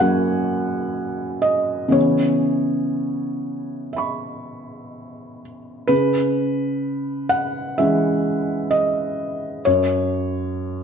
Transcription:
Already playing: F#2 C#5 G#5
0.00 F#3 A#3 C#4 F#5
1.42 D#5
1.88 C#3 E3 B3 C#4 C#5
3.93 E5 B5
3.98 C#6
5.87 C#3 B4
7.29 F#5
7.78 E3 G#3 C#4 E5
8.71 D#5
9.65 F#2 C#5

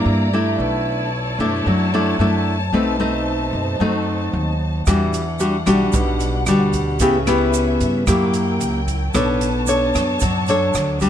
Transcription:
Already playing: G3 A#3 D4 E4 D5 A#5
0.05 G2
0.33 A3 D4 E4
0.58 B1 B2 E4 C#5 A5
1.39 F#2 A3 D4 E4
1.66 F#2 F#3
1.94 A3 D4 E4
2.19 F#2 A3 D4 E4
2.73 B1 B2 A3 C4 D#4 C5
3.00 A3 C4 D#4
3.53 F#2
3.80 F#2 F#3 A3 C4 D#4
4.33 D#2
4.86 E2 E3 G3 D4 F#4 F#5, kick, cross-stick, closed hi-hat, shaker
5.13 closed hi-hat, shaker
5.39 G3 D4 F#4, closed hi-hat, shaker
5.66 B1 G3 D4 F#4, kick, cross-stick, closed hi-hat, shaker
5.93 B1 B2, kick, closed hi-hat, shaker
6.20 closed hi-hat, shaker
6.46 D2 G3 D4 F#4, cross-stick, closed hi-hat, shaker
6.73 kick, closed hi-hat, shaker
7.00 C#2 C#3 B3 C#4 E4 G4 B4 E5, kick, closed hi-hat, shaker
7.27 B3 E4 G4, cross-stick, closed hi-hat, shaker
7.54 closed hi-hat, shaker
7.81 G2, kick, closed hi-hat, shaker
8.07 F#2 F#3 A#3 E4 G4 A#4 G5, kick, cross-stick, closed hi-hat, shaker
8.34 closed hi-hat, shaker
8.60 C#2, closed hi-hat, shaker
8.88 kick, closed hi-hat, shaker
9.13 B1 B3 D4 A4 C#5 A5, kick, cross-stick, closed hi-hat, shaker
9.41 closed hi-hat, shaker
9.67 D4 A4 C#5, closed hi-hat, shaker
9.94 F#2, kick, cross-stick, closed hi-hat, shaker
10.20 F#2 F#3, kick, closed hi-hat, shaker
10.47 D4 A4 C#5, closed hi-hat, shaker
10.74 D2, cross-stick, closed hi-hat, shaker
11.00 G3 D4 F#4, kick, closed hi-hat, shaker

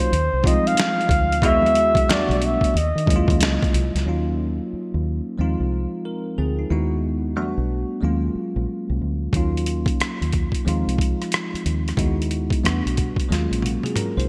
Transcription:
Already playing: F#3 A#3 C#4 D#4 F4 C5
0.00 closed hi-hat
0.11 D#2, closed hi-hat, muted conga
0.33 C2
0.43 F3 G3 C4 D#4 F4, kick, high conga
0.47 D#5, closed hi-hat
0.51 G#3
0.67 F5, closed hi-hat
0.75 closed hi-hat, muted conga, high conga
0.80 snare
1.01 closed hi-hat
1.09 D2, kick, closed hi-hat, low conga
1.32 closed hi-hat
1.42 D#2 G#3 B3 E4 F#4 E5, kick, closed hi-hat
1.62 high conga
1.66 closed hi-hat
1.75 closed hi-hat, muted conga
1.95 kick, closed hi-hat, high conga
2.08 E2 G3 A3 B3 D4 F#4 D5, snare, closed hi-hat, muted conga
2.29 B1 D5, closed hi-hat, high conga, low conga
2.42 E5, closed hi-hat
2.61 kick, closed hi-hat, low conga
2.74 D#2 D#5, closed hi-hat, muted conga
2.96 D#3, closed hi-hat
3.06 D#2 F#3 G#3 A#3 C#4 E4, kick, high conga
3.10 closed hi-hat
3.16 F4
3.28 D#2, kick, closed hi-hat
3.39 C#2, snare, closed hi-hat, high conga
3.63 kick, closed hi-hat
3.72 C2, closed hi-hat, muted conga, low conga
3.95 C#2, snare, closed hi-hat
4.05 D#2 F#3 A#3 C#4 D#4 F4
4.73 muted fingered electric bass stroke
4.94 D#2
5.38 D#2 F3 G#3 C4 D#4 F4
5.60 C2
6.05 A#4
6.38 D2 C4 G#4
6.59 D#4
6.70 D#2 G#3 B3 D#4 E4 F#4
7.36 E2 F#3 A3 B3 D4 F#4
7.42 G3
7.58 B1
8.01 D#2 F#3 G#3 A#3 C#4 F4
8.35 muted fingered electric bass stroke
8.56 A#1
8.90 C2
9.01 D2
9.33 D#2 F#3 A#3 C#4 D#4 F4, kick, closed hi-hat
9.57 closed hi-hat
9.66 closed hi-hat
9.86 kick, closed hi-hat
10.00 muted fingered electric bass stroke, cross-stick, closed hi-hat
10.21 D#2, closed hi-hat
10.32 kick, closed hi-hat
10.52 kick, closed hi-hat
10.65 D#2 F3 G#3 C4 D#4 F4, closed hi-hat
10.87 C2, closed hi-hat
10.98 kick, closed hi-hat
11.22 cross-stick, closed hi-hat
11.32 cross-stick, closed hi-hat
11.54 muted fingered electric bass stroke, closed hi-hat
11.66 D#2, closed hi-hat
11.88 cross-stick, closed hi-hat
11.97 D#2 G#3 B3 D#4 E4 F#4, kick, closed hi-hat
12.22 closed hi-hat
12.31 closed hi-hat
12.50 kick, closed hi-hat
12.64 E2 G3 A3 B3 D4 F#4, cross-stick, closed hi-hat
12.86 B1, closed hi-hat
12.97 kick, closed hi-hat
13.16 kick, closed hi-hat
13.29 D#2 F#3 G#3 A#3 C#4 F4, snare, closed hi-hat
13.51 A#1, closed hi-hat
13.62 A#3 F#4, closed hi-hat, high tom
13.83 C4 G#4, closed hi-hat, high tom
13.96 C#4 A#4, closed hi-hat, mid tom
14.17 C2 D#4 C5, closed hi-hat

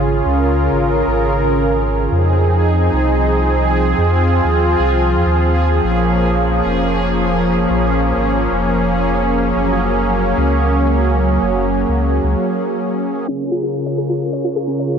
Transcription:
Already playing: G#1 C#3 C#4 F4 G#4
0.26 C#2 A#4
0.72 G#1
1.07 G#1
2.12 F2 F3 C4 D#4 G#4
2.93 C2
3.98 F2 F4
4.45 D#2
4.79 C2
5.14 F2
5.26 D#2
5.84 A#1 A#3 C#4
6.66 F1
7.70 A#1
8.17 G#1
8.52 F1
9.56 F#1 F#3
10.38 C#2
11.42 F#1
11.89 C#2
12.24 C#2
13.28 C#3 C#4 F4 G#4 A#4
13.52 F4
13.63 F4
13.86 C#5
13.98 G#4
14.10 F4
14.33 C#5
14.44 F4
14.56 G#4
14.68 C#4
14.79 C#5

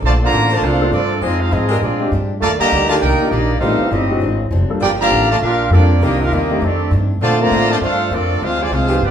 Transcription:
0.02 A#1 D3 F3 A3 A#3 D4 F4 A4 C5 D5 A5
0.22 D3 F3 A#3 F4 C5 D5 A#5
0.32 A1 A#3 D4 A4 C5
0.50 D3 F3 A3 A#3 D4 F4 A4 C5 D5 A5
0.62 C2 A3 A#3 D4 F4 A4 C5 F5
0.80 A#3 C4 D4 F4 A4
0.92 G2 F3 A3 A#3 C4 D4 F4 A4 C5 D5
1.21 F2 F3 G#3 C4 D#4 F4 G#4 C5 D#5
1.40 G#3 C4 D#4 F4 G#4 C5 F5
1.51 G#2 F3 G#3 C4 D#4 F4 G#4 D#5
1.69 G#3 D4 G4 A#4
1.81 A#2 F3 G#3 C4 D4 F4 G4 G#4 D5
2.00 G#3 C4 D4 F4 G4
2.12 G2 A#2 G#3 D4 G4
2.40 D#2 D#3 G3 A3 A#3 F4 A#4 D5 A5
2.45 D4
2.58 D3 G3 A#3 G4 D5 D#5 A#5, muted upright bass stroke
2.72 D2 D#3 G3 A#3 D4
2.89 D#3 A3 A#3 D4 F4 G4 A#4 D5 A5
3.00 C2 D#3 G3 A#3 D#4 G4 A#4 D5 G5
3.05 A#3 D4
3.20 A#3 D4 D#4 F4 G4, muted upright bass stroke
3.30 A#1 D#3 G3 A#3 D#4 G4 D5 D#5
3.34 D4
3.59 A1 A2 D#3 G3 A3 B3 C4 D#4 F4 G4 A4 C5 F5
3.63 C4 D#4 G4
3.80 muted upright bass stroke
3.89 G1 A2 G3 C4 D#4 G4 A4 D#5
4.10 G#3 C4 D4 D#4 F#4
4.20 G#1 G#2 F#3 C4 D4
4.51 F1 G#2 F#3 C4 D4
4.69 G3 A#3 D4 F4 A4, muted upright bass stroke
4.80 G1 G2 F3 A#3 D4 F4 G4 A#4 D5 G5
5.00 D3 F3 A#3 G4 D5 F5 A#5
5.11 A1 G2 F3 A#3 D4
5.30 A3 F4 A#4 D5 A5
5.41 A#1 G2 F3 A#3 D4 F4 G4 A#4 F5
5.70 F2 G2 F3 G3 A#3 D4 F4 G4 A4 D5
5.75 D4
6.01 C2 C3 D#3 G3 A#3 C4 D4 D#4 G4 A#4 D#5
6.21 D4 F4 G4 A#4 F5
6.31 D#2 C3 D#3 G3 A#3 D4 D#4 G4 D5 D#5
6.50 D#3 A3 C4 D4 G4
6.61 F2 D#3 A3 C4 D4 G4 A4 D5
6.91 F2 G2 D#3 A3 D4
7.21 A#2 D3 F3 A3 A#3 C4 D4 F4 A4 C5 D5 A5
7.39 D3 F3 A3 A#3 C4 D4 F4 C5 D5 A#5
7.51 A2 A#3 D4 A4 C5
7.68 D3 F3 A3 F4 C5 D5 A5
7.79 G2 A3 A#3 D4 F4 A4
7.84 D4 A4 C5 F5
8.11 F2 F3 A3 A#3 C4 D4 F4 A4 C5 D5
8.41 D2 D3 G#3 C4 D4 F4 G#4 C5 F5
8.60 C3 F3 G#3 F4 C5 D5 G#5
8.71 C2 D3 G#3 C4 D4 F4 G#4 C5 F5
8.88 F3 B3 D#4 G4
9.00 G1 G2 F3 B3 D4 D#4 G4 B4
9.04 F4 D5 G5

